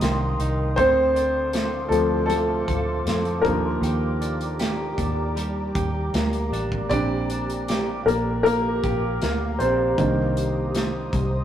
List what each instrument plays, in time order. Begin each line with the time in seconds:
Already playing: clean electric guitar C3 G3 D#4 G4, upright piano D#3 A#3 D4, ambient pad A#4 G5 C6 D#6
0.01 fingered electric bass C2, clean electric guitar A#3, snare, closed hi-hat
0.39 fingered electric bass C2, clean electric guitar D#4, closed hi-hat
0.76 fingered electric bass D2, clean electric guitar D3 A4, upright piano C4 C5, ambient pad A4 F5 D6, kick, closed hi-hat
1.15 clean electric guitar D4, closed hi-hat
1.53 clean electric guitar A4, snare, closed hi-hat
1.89 fingered electric bass D2, upright piano F3 A3 C4 A4, clean electric guitar D4, closed hi-hat
2.26 upright piano A3 A4, closed hi-hat
2.30 clean electric guitar F3
2.68 fingered electric bass D2, clean electric guitar A4, kick, closed hi-hat
3.06 fingered electric bass F2, clean electric guitar C4, snare, closed hi-hat
3.25 closed hi-hat
3.42 fingered electric bass D#2, clean electric guitar D#3, upright piano F3 G3 A#3 D4 A#4, ambient pad G4 D5 A#5, kick
3.46 closed hi-hat
3.81 fingered electric bass D#2, clean electric guitar D#3 G4, closed hi-hat
4.21 clean electric guitar D4, closed hi-hat
4.41 closed hi-hat
4.59 clean electric guitar G4, snare, closed hi-hat
4.98 fingered electric bass D#2, clean electric guitar D4, kick, closed hi-hat
5.36 clean electric guitar G3, closed hi-hat
5.75 fingered electric bass D#2, clean electric guitar G4, kick, closed hi-hat
6.14 fingered electric bass D2, clean electric guitar A#3, snare, closed hi-hat
6.33 closed hi-hat
6.51 fingered electric bass A1, clean electric guitar D4, closed hi-hat
6.72 kick
6.89 fingered electric bass A#1, clean electric guitar A#2 G4, upright piano G3 C4 D4 D5, ambient pad G4 F5, kick, closed hi-hat
7.30 clean electric guitar D4, closed hi-hat
7.50 closed hi-hat
7.68 clean electric guitar G4, snare, closed hi-hat
8.06 fingered electric bass A#1, upright piano A#3 A#4, clean electric guitar D4, closed hi-hat
8.43 clean electric guitar F3, upright piano A#3 A#4, closed hi-hat
8.84 fingered electric bass A#1, clean electric guitar G4, kick, closed hi-hat
9.22 fingered electric bass D2, clean electric guitar A#3, snare, closed hi-hat
9.59 fingered electric bass A#1, upright piano C4 C5, clean electric guitar D4, closed hi-hat
9.98 fingered electric bass C2, upright piano D#3 A#3 D4, ambient pad C5 D#6, kick, closed hi-hat
10.37 closed hi-hat
10.75 snare, closed hi-hat
11.13 fingered electric bass C2, kick, closed hi-hat